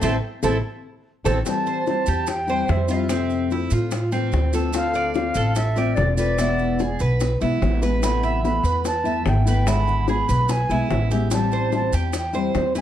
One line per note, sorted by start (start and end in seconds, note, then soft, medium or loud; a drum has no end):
0.02 0.17 A1 medium
0.02 0.15 E3 medium
0.02 0.15 A3 medium
0.02 0.15 C4 medium
0.02 0.16 C4 medium
0.02 0.15 E4 medium
0.02 0.15 A4 medium
0.02 0.16 A4 medium
0.02 low bongo medium
0.02 maracas loud
0.43 0.59 A1 medium
0.43 0.57 E3 medium
0.43 0.56 A3 medium
0.43 0.57 C4 medium
0.43 0.56 C4 medium
0.43 0.57 E4 medium
0.43 0.56 A4 medium
0.43 0.57 A4 medium
0.43 low bongo medium
0.43 maracas loud
1.24 1.41 A1 medium
1.24 1.38 E3 medium
1.24 1.38 A3 medium
1.24 1.38 C4 medium
1.24 1.39 C4 medium
1.24 1.39 E4 medium
1.24 1.38 A4 medium
1.24 low bongo loud
1.24 maracas medium
1.45 1.85 E3 medium
1.45 1.86 G3 medium
1.45 1.86 C4 medium
1.45 1.86 E4 medium
1.45 1.85 A5 loud
1.45 high bongo medium
1.45 maracas medium
1.66 2.06 C5 medium
1.66 maracas soft
1.86 2.26 E3 medium
1.86 2.26 G3 soft
1.86 2.27 C4 medium
1.86 2.27 E4 medium
1.86 2.30 A5 medium
1.86 high bongo medium
1.86 maracas soft
2.06 2.65 E2 medium
2.06 2.47 G4 medium
2.06 maracas medium
2.27 2.71 G5 medium
2.27 muted nylon-string guitar stroke medium
2.27 high bongo medium
2.27 maracas medium
2.47 2.67 G3 medium
2.47 2.68 C4 medium
2.47 2.67 E4 medium
2.47 2.89 C5 medium
2.47 maracas soft
2.68 3.65 F2 medium
2.68 2.88 E3 soft
2.68 2.87 E4 medium
2.68 2.89 E5 medium
2.68 high bongo medium
2.68 low bongo medium
2.68 maracas soft
2.88 3.09 G3 medium
2.88 3.09 C4 medium
2.88 3.08 E4 medium
2.88 3.10 F4 medium
2.88 3.68 E5 medium
2.88 maracas medium
3.08 3.49 C3 medium
3.08 3.49 A3 medium
3.08 3.49 C4 medium
3.08 3.50 C4 medium
3.08 3.50 F4 medium
3.08 high bongo medium
3.08 maracas medium
3.30 high bongo soft
3.30 maracas soft
3.50 3.91 A3 medium
3.50 3.91 C4 medium
3.50 3.71 E4 medium
3.50 3.91 F4 medium
3.50 high bongo medium
3.50 maracas soft
3.70 4.29 A2 medium
3.70 4.12 F4 medium
3.70 maracas medium
3.91 muted nylon-string guitar stroke medium
3.91 high bongo medium
3.91 maracas medium
4.12 4.31 E3 medium
4.12 4.32 A3 medium
4.12 4.52 C4 medium
4.12 4.32 C4 medium
4.12 4.32 F4 medium
4.12 high bongo soft
4.12 maracas soft
4.32 5.29 D2 medium
4.32 4.53 E3 medium
4.32 4.53 A3 soft
4.32 4.52 C4 medium
4.32 4.52 F4 medium
4.32 high bongo medium
4.32 low bongo medium
4.32 maracas soft
4.53 4.72 E3 medium
4.53 4.72 A3 medium
4.53 4.73 C4 medium
4.53 4.73 F4 medium
4.53 4.94 A4 medium
4.53 high bongo soft
4.53 maracas medium
4.72 5.13 D3 medium
4.72 5.14 A3 medium
4.72 5.14 C4 medium
4.72 5.14 F4 medium
4.72 5.13 F5 loud
4.72 high bongo medium
4.72 maracas medium
4.94 5.35 D5 medium
4.94 maracas soft
5.14 5.55 D3 soft
5.14 5.55 A3 medium
5.14 5.55 C4 medium
5.14 5.56 F4 medium
5.14 5.53 F5 loud
5.14 high bongo medium
5.14 maracas soft
5.35 5.93 A1 loud
5.35 5.76 A4 medium
5.35 maracas medium
5.55 5.96 E5 loud
5.55 muted nylon-string guitar stroke medium
5.55 high bongo medium
5.55 maracas medium
5.76 5.97 A3 medium
5.76 5.96 C4 medium
5.76 5.96 F4 medium
5.76 6.17 D5 medium
5.76 maracas soft
5.95 6.94 E1 medium
5.95 6.17 D3 soft
5.95 6.17 A3 medium
5.95 6.17 C4 medium
5.95 6.15 D5 medium
5.95 high bongo medium
5.95 low bongo medium
5.95 maracas soft
5.99 6.16 F4 medium
6.16 6.38 A3 medium
6.16 6.38 C4 medium
6.16 6.37 F4 medium
6.16 6.38 B4 medium
6.16 6.95 D5 medium
6.16 maracas medium
6.38 6.78 B2 medium
6.38 6.79 E3 medium
6.38 6.79 G#3 medium
6.38 6.79 B3 medium
6.38 6.79 E4 medium
6.38 high bongo medium
6.38 maracas medium
6.59 high bongo soft
6.59 maracas soft
6.79 7.20 E3 soft
6.79 7.20 G#3 medium
6.79 7.20 B3 medium
6.79 7.20 E4 medium
6.79 7.00 G#4 medium
6.79 high bongo medium
6.79 maracas soft
7.00 7.38 B1 medium
7.00 7.40 B4 medium
7.00 maracas medium
7.20 muted nylon-string guitar stroke medium
7.20 high bongo medium
7.20 maracas medium
7.41 7.60 B1 medium
7.41 7.60 E3 medium
7.41 7.60 G#3 medium
7.41 7.61 B3 medium
7.41 7.61 E4 medium
7.41 7.81 E4 medium
7.41 high bongo soft
7.41 maracas soft
7.61 8.58 A1 medium
7.61 7.81 E3 soft
7.61 7.81 G#3 soft
7.61 7.81 B3 medium
7.61 7.80 E4 medium
7.61 high bongo medium
7.61 low bongo medium
7.61 maracas soft
7.81 8.01 E3 medium
7.81 8.02 G#3 medium
7.81 8.02 B3 medium
7.81 8.01 E4 medium
7.81 8.22 B4 medium
7.81 high bongo soft
7.81 maracas medium
8.02 8.42 C3 medium
8.02 8.41 E3 medium
8.02 8.42 A3 medium
8.02 8.42 B3 medium
8.02 8.43 E4 medium
8.02 8.41 B5 loud
8.02 high bongo medium
8.02 maracas medium
8.23 8.63 E5 medium
8.23 maracas soft
8.42 8.83 E3 medium
8.42 8.83 A3 soft
8.42 8.84 B3 medium
8.42 8.83 E4 medium
8.42 8.82 B5 loud
8.42 high bongo medium
8.42 maracas soft
8.63 9.21 E2 medium
8.63 9.04 B4 medium
8.63 maracas medium
8.84 9.24 A5 loud
8.84 muted nylon-string guitar stroke medium
8.84 high bongo medium
8.84 maracas medium
9.04 9.23 E3 medium
9.04 9.23 A3 medium
9.04 9.24 B3 medium
9.04 9.24 E4 medium
9.04 9.45 E5 medium
9.04 maracas soft
9.24 10.22 G#1 medium
9.24 9.45 E3 soft
9.24 9.45 A3 soft
9.24 9.45 B3 medium
9.24 9.44 E4 soft
9.24 9.45 G5 medium
9.24 high bongo medium
9.24 low bongo medium
9.24 maracas soft
9.45 9.66 E3 medium
9.45 9.66 A3 medium
9.45 9.65 B3 medium
9.45 9.66 E4 medium
9.45 9.67 B4 medium
9.45 9.69 G5 medium
9.45 maracas medium
9.65 10.06 D3 medium
9.65 10.06 G#3 medium
9.65 10.07 B3 medium
9.65 10.07 E4 medium
9.65 10.07 G#4 medium
9.65 10.08 B5 loud
9.65 high bongo medium
9.65 maracas medium
9.88 high bongo soft
9.88 maracas soft
10.08 10.46 G#3 medium
10.08 10.47 B3 medium
10.08 10.47 E4 medium
10.08 10.28 G#4 medium
10.08 10.48 G#4 medium
10.08 10.52 B5 medium
10.08 high bongo medium
10.08 maracas soft
10.29 10.67 B1 loud
10.29 10.69 B4 medium
10.29 maracas medium
10.48 10.91 G#5 loud
10.48 muted nylon-string guitar stroke medium
10.48 high bongo medium
10.48 maracas medium
10.69 10.89 B1 medium
10.69 10.89 G#3 medium
10.69 10.90 B3 medium
10.69 10.89 E4 medium
10.69 11.10 E4 medium
10.69 10.89 G#4 medium
10.69 high bongo soft
10.69 maracas soft
10.90 11.87 A1 loud
10.90 11.10 G#3 medium
10.90 11.10 B3 medium
10.90 11.10 E4 medium
10.90 11.10 G#4 medium
10.90 11.11 E5 medium
10.90 high bongo medium
10.90 low bongo medium
10.90 maracas soft
11.11 11.31 G#3 medium
11.11 11.31 B3 medium
11.11 11.31 E4 medium
11.11 11.51 G4 medium
11.11 11.30 G#4 medium
11.11 11.30 E5 medium
11.11 high bongo soft
11.11 maracas medium
11.31 11.70 E3 medium
11.31 11.71 G3 medium
11.31 11.72 C4 medium
11.31 11.72 E4 medium
11.31 11.70 A5 medium
11.31 high bongo medium
11.31 maracas loud
11.51 11.92 C5 medium
11.51 maracas soft
11.71 12.12 E3 medium
11.71 12.12 G3 medium
11.71 12.12 C4 medium
11.71 12.12 E4 medium
11.71 11.96 A5 medium
11.71 high bongo medium
11.71 maracas soft
11.93 12.50 E2 medium
11.93 12.33 G4 medium
11.93 12.14 G5 medium
11.93 maracas medium
12.13 12.47 G5 medium
12.13 muted nylon-string guitar stroke medium
12.13 high bongo medium
12.13 maracas medium
12.33 12.54 G3 medium
12.33 12.53 C4 medium
12.33 12.53 E4 medium
12.33 12.74 C5 medium
12.33 maracas soft
12.54 12.81 E2 medium
12.54 12.74 E3 medium
12.54 12.75 G3 soft
12.54 12.74 C4 medium
12.54 12.74 E4 medium
12.54 high bongo medium
12.54 low bongo medium
12.54 maracas soft
12.75 12.81 G3 medium
12.75 12.81 C4 medium
12.75 12.81 E4 medium
12.75 12.81 B4 medium
12.75 12.81 G#5 medium
12.75 maracas medium